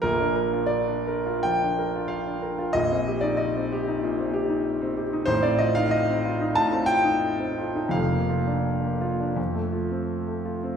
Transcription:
\new Staff \with { instrumentName = "Grand piano" } { \time 4/4 \key bes \major \tempo 4 = 93 << { bes'4 d''4 g''4 f''4 | ees''8. d''16 ees''2~ ees''8 r8 | c''16 d''16 ees''16 f''16 ees''4 a''8 g''4. | f''2.~ f''8 r8 | } \\ { <bes,, bes,>16 d'16 bes'16 f'8 d'16 bes'16 f'16 f16 d'16 bes'16 f'8 d'16 bes'16 f'16 | <bes,, bes,>16 c'16 g'16 ees'8 c'16 g'16 ees'16 bes,16 c'16 g'16 ees'8 c'16 g'16 ees'16 | <a,, a,>16 c'16 f'16 ees'8 c'16 f'16 ees'16 a,16 c'16 f'16 ees'8 c'16 f'16 ees'16 | <f,, f,>16 bes16 f'16 d'8 bes16 f'16 d'16 f,16 a16 f'16 c'8 a16 f'16 c'16 | } >> }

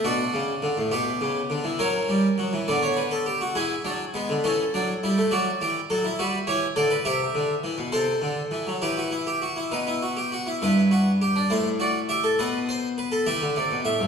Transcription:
<<
  \new Staff \with { instrumentName = "Harpsichord" } { \time 6/8 \key b \minor \tempo 4. = 68 << { fis'4. g'4. | ais'4. d''16 cis''16 b'16 a'16 g'16 fis'16 | gis'4. a'4. | d''4. b'8 cis''8 d''8 |
\key e \minor e''4. c''4. | b'4. b'4. | b'4. c''8 d''8 e''8 | dis''4. e''8 d''8 e''8 | } \\ { d'4. b4. | cis'4. b4. | e'8 d'8 b8 cis'8 d'8 e'8 | fis'8 g'8 a'16 e'16 fis'8 g'8 a'16 b'16 |
g'4. a'4. | g'16 fis'16 e'16 g'16 fis'16 e'16 dis'16 e'16 fis'16 g'16 fis'16 e'16 | e'8 fis'8 g'16 d'16 e'8 fis'8 g'16 a'16 | b'8 c''8 b'16 a'16 g'4. | } >> }
  \new Staff \with { instrumentName = "Harpsichord" } { \clef bass \time 6/8 \key b \minor b,8 cis8 d16 a,16 b,8 cis8 d16 e16 | fis8 g8 fis16 e16 d4. | e8 fis8 gis16 d16 e8 fis8 g16 a16 | fis8 e8 fis8 g8 e8 d8 |
\key e \minor c8 d8 e16 b,16 c8 d8 e16 fis16 | e4. b,4. | g,4. a,4. | b,4. e16 d16 c16 b,16 a,16 g,16 | }
>>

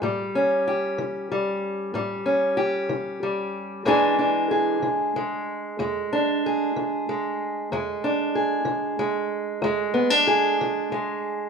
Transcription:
\new Staff \with { instrumentName = "Steel-string acoustic guitar" } { \clef bass \time 12/8 \key e \mixolydian \tempo 4. = 63 << { g8 cis'8 g'4 g4 g8 cis'8 g'4 g4 | <e gis d' gis'>8 d'8 gis'4 gis4 gis8 d'8 gis'4 gis4 | gis8 d'8 gis'4 gis4 gis8 b16 d'16 gis'4 gis4 | } \\ { a,4 r8 e4 r8 a,4 r8 e4 r8 | e,4 r8 e4 r8 e,4 r8 e4 r8 | e,4 r8 e4 r8 e,4 r8 e4 r8 | } >> }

